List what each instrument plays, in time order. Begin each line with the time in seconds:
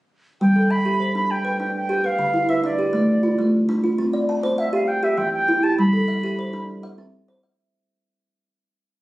0.41 kalimba G3, flute G5
0.56 kalimba A4
0.70 kalimba E5, flute B5
0.85 kalimba G4
1.00 kalimba C5
1.15 kalimba D4, flute B5
1.31 flute G5
1.45 kalimba B4
1.60 kalimba D4, flute G5
1.76 flute G5
1.89 kalimba G4
2.04 kalimba B4, flute F5
2.19 kalimba D3
2.34 kalimba E4
2.49 kalimba B4, flute E5
2.64 kalimba D4, flute D5
2.79 kalimba G4
2.93 kalimba A3
3.23 kalimba F4
3.39 kalimba A3
3.69 kalimba D4
3.84 kalimba F4
3.98 kalimba C4
4.13 kalimba D5
4.29 kalimba A5
4.43 kalimba C5
4.58 flute E5, kalimba F5
4.73 kalimba G4, flute F5
4.88 flute G5
5.03 kalimba G4, flute E5
5.18 kalimba E3, flute G5
5.33 flute G5
5.48 kalimba E4
5.63 kalimba G4, flute A5
5.78 kalimba G3, flute B5
5.93 kalimba A4
6.08 kalimba E5
6.23 kalimba G4
6.39 kalimba C5
6.53 kalimba D4
6.83 kalimba E5
6.98 kalimba C4
7.28 kalimba C5
7.43 kalimba E5